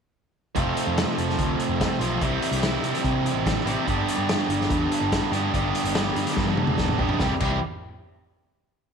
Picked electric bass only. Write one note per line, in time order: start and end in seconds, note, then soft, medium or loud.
0.56 0.72 F1 loud
0.87 1.03 F2 medium
1.18 1.34 F1 medium
1.39 1.55 D2 medium
1.69 1.86 F1 medium
2.00 2.17 B1 medium
2.21 2.38 C2 medium
2.51 2.77 C2 medium
2.82 2.91 C3 medium
3.04 3.29 C3 medium
3.33 3.59 A1 medium
3.66 3.74 A1 medium
3.87 4.04 G1 loud
4.17 4.34 G2 medium
4.49 4.66 G1 medium
4.70 4.87 E2 loud
5.01 5.18 G1 medium
5.32 5.49 G2 loud
5.54 5.71 G1 medium
5.84 6.10 G1 medium
6.16 6.24 G2 medium
6.37 6.62 G2 loud
6.67 6.92 E1 medium
6.99 7.07 E1 loud
7.20 7.31 C2 medium
7.41 7.60 C2 loud